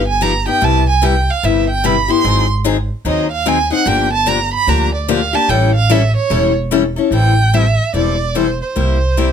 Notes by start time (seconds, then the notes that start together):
Already playing: G1
0.08 G#5
0.21 F3 B3 D#4 G4 A#5
0.46 B3 D#4 G4 G5
0.61 C2 C3 G3 B3 E4 G4 A5
0.89 G#5
1.02 C3 G3 B3 E4 G4 G5
1.30 F5
1.43 G1 C3 G3 B3 E4 G4 E5
1.70 G5
1.84 C3 G3 B3 E4 G4 B5
2.08 B3 E4 G4 C6
2.24 G#1 D#3 F#3 C4 D#4 G#4
2.64 D#3 F#3 C4 D#4 G#4
3.05 D#2 D#3 F#3 C4 D#4 G#4 D#5
3.32 F5
3.46 D#3 F#3 C4 D#4 G#4 G#5
3.70 C4 D#4 G#4 F#5
3.85 G1 D3 F3 A#3 D4 G4 G5
4.13 A5
4.26 D3 F3 A#3 D4 G4 A#5
4.54 B5
4.67 D2 D3 F3 A#3 D4 G4 A#5
4.95 D5
5.08 D3 F3 A#3 D4 G4 F5
5.33 A#3 D4 G4 A5
5.49 A1 E3 G3 C#4 E4 A4 G5
5.75 F5
5.90 E3 G3 C#4 E4 A4 E5
6.17 C#5
6.30 E1 E3 G3 C#4 E4 A4
6.71 E3 G3 C#4 E4 A4
6.96 C#4 E4 A4
7.11 A1 E3 G3 C4 E4 A4 G5
7.53 E3 G3 C4 E4 A4 E5
7.94 E1 E3 G3 C4 E4 A4 D5
8.35 E3 G3 C4 E4 A4 C5
8.62 C5
8.76 C2 C3 G3 A#3 E4 G4
9.17 C3 G3 A#3 E4 G4